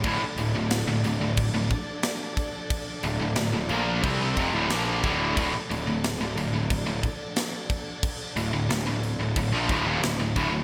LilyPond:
<<
  \new Staff \with { instrumentName = "String section" } { \time 4/4 \key d \minor \tempo 4 = 90 <f d' a' d''>1~ | <f d' a' d''>1~ | <f d' a' d''>1~ | <f d' a' d''>1 | }
  \new Staff \with { instrumentName = "Distorted electric guitar" } { \clef bass \time 4/4 \key d \minor <d, a,>16 r16 <d, a,>16 <d, a,>8 <d, a,>16 <d, a,>16 <d, a,>8 <d, a,>16 r4. | r8 <d, a,>16 <d, a,>16 <d, a,>16 <d, a,>16 <bes, f bes>8 <c g c'>8 <f, c>16 <d, a,>16 <bes, f bes>8 <d, a, d>8 | <d, a,>16 r16 <d, a,>16 <d, a,>8 <d, a,>16 <d, a,>16 <d, a,>8 <d, a,>16 r4. | r8 <d, a,>16 <d, a,>16 <d, a,>16 <d, a,>8 <d, a,>16 <d, a,>16 <bes, f>16 <d, a,>16 <ees, bes,>16 <d, a,>16 <d, a,>16 <d, a,>16 <d, a,>16 | }
  \new Staff \with { instrumentName = "Distorted electric guitar" } { \clef bass \time 4/4 \key d \minor <d, a,>16 r16 <d, a,>16 <d, a,>8 <d, a,>16 <d, a,>16 <d, a,>8 <d, a,>16 r4. | r8 <d, a,>16 <d, a,>16 <d, a,>16 <d, a,>16 <bes, f bes>8 <c g c'>8 <f, c>16 <d, a,>16 <bes, f bes>8 <d, a, d>8 | <d, a,>16 r16 <d, a,>16 <d, a,>8 <d, a,>16 <d, a,>16 <d, a,>8 <d, a,>16 r4. | r8 <d, a,>16 <d, a,>16 <d, a,>16 <d, a,>8 <d, a,>16 <d, a,>16 <bes, f>16 <d, a,>16 <ees, bes,>16 <d, a,>16 <d, a,>16 <d, a,>16 <d, a,>16 | }
  \new Staff \with { instrumentName = "Overdriven electric guitar" } { \clef bass \time 4/4 \key d \minor <d, a,>16 r16 <d, a,>16 <d, a,>8 <d, a,>16 <d, a,>16 <d, a,>8 <d, a,>16 r4. | r8 <d, a,>16 <d, a,>16 <d, a,>16 <d, a,>16 <bes, f bes>8 <c g c'>8 <f, c>16 <d, a,>16 <bes, f bes>8 <d, a, d>8 | <d, a,>16 r16 <d, a,>16 <d, a,>8 <d, a,>16 <d, a,>16 <d, a,>8 <d, a,>16 r4. | r8 <d, a,>16 <d, a,>16 <d, a,>16 <d, a,>8 <d, a,>16 <d, a,>16 <bes, f>16 <d, a,>16 <ees, bes,>16 <d, a,>16 <d, a,>16 <d, a,>16 <d, a,>16 | }
  \new Staff \with { instrumentName = "Picked electric bass" } { \clef bass \time 4/4 \key d \minor d,,16 r16 d,,16 d,,8 d,,16 d,,16 d,,8 d,,16 r4. | r8 d,,16 d,,16 d,,16 d,,16 bes,,8 c,8 f,,16 d,,16 bes,,8 d,,8 | d,,16 r16 d,,16 d,,8 d,,16 d,,16 d,,8 d,,16 r4. | r8 d,,16 d,,16 d,,16 d,,8 d,,16 d,,16 bes,,16 d,,16 ees,,16 d,,16 d,,16 d,,16 d,,16 | }
  \new DrumStaff \with { instrumentName = "Drums" } \drummode { \time 4/4 <cymc bd>8 cymc8 <cymc sn>8 cymc8 <cymc bd>8 <cymc bd>8 <cymc sn>8 <cymc bd>8 | <cymc bd>8 cymc8 <cymc sn>8 cymc8 <cymc bd>8 <cymc bd>8 <cymc sn>8 <cymc bd>8 | <cymc bd>8 cymc8 <cymc sn>8 cymc8 <cymc bd>8 <cymc bd>8 <cymc sn>8 <cymc bd>8 | <cymc bd>8 cymc8 <cymc sn>8 cymc8 <cymc bd>8 <cymc bd>8 <cymc sn>8 <cymc bd>8 | }
>>